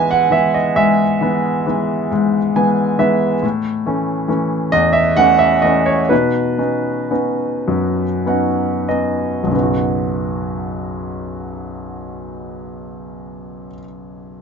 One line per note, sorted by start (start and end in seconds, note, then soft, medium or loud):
0.00 0.76 G#2 medium
0.00 0.30 E3 soft
0.00 0.31 G#3 soft
0.00 0.31 B3 soft
0.00 0.54 D#5 medium
0.00 0.32 E5 medium
0.00 2.56 G#5 medium
0.11 0.33 F#5 medium
0.30 1.03 E3 soft
0.30 1.03 G#3 soft
0.30 1.03 B3 soft
0.30 0.55 E5 medium
0.54 0.77 D#5 medium
0.76 2.10 G#2 medium
0.76 2.07 G#4 soft
0.76 2.07 E5 medium
1.21 1.65 E3 soft
1.21 1.65 G#3 soft
1.21 1.65 B3 soft
1.66 2.37 E3 soft
1.66 2.38 G#3 soft
1.66 2.38 B3 soft
2.12 3.40 G#2 medium
2.56 2.97 E3 soft
2.56 2.97 G#3 soft
2.56 2.98 B3 soft
2.56 2.97 G#5 medium
2.99 3.34 E3 soft
2.99 3.34 G#3 soft
2.99 3.35 B3 medium
2.99 3.40 E5 medium
3.43 6.07 A2 medium
3.86 4.27 E3 soft
3.86 4.27 A3 soft
3.86 4.28 C#4 soft
4.28 5.00 E3 soft
4.28 5.00 A3 soft
4.28 5.00 C#4 soft
4.72 6.07 E2 medium
4.72 4.94 D#5 medium
4.93 5.18 E5 medium
5.17 5.61 E3 soft
5.17 5.61 A3 soft
5.17 5.62 C#4 medium
5.17 5.41 F#5 loud
5.39 5.61 E5 medium
5.62 6.01 E3 soft
5.62 6.01 A3 soft
5.62 6.02 C#4 medium
5.62 5.87 D#5 medium
5.86 6.11 C#5 medium
6.09 9.49 B2 medium
6.09 6.57 D#4 soft
6.09 8.23 B4 medium
6.58 7.09 B3 soft
6.58 7.09 C#4 soft
6.58 7.10 D#4 soft
7.11 8.03 B3 soft
7.11 8.03 C#4 soft
7.11 8.04 D#4 soft
7.68 9.45 F#2 medium
8.26 8.87 B3 soft
8.26 8.87 C#4 soft
8.26 8.87 D#4 soft
8.26 8.85 F#5 medium
8.88 9.40 B3 soft
8.88 9.40 C#4 soft
8.88 9.41 D#4 soft
8.88 9.49 D#5 medium
9.43 13.64 B1 soft
9.43 13.68 F#2 soft
9.51 13.72 C#3 soft
9.55 13.76 B3 soft
9.55 13.80 D#4 soft
9.63 13.84 F#4 soft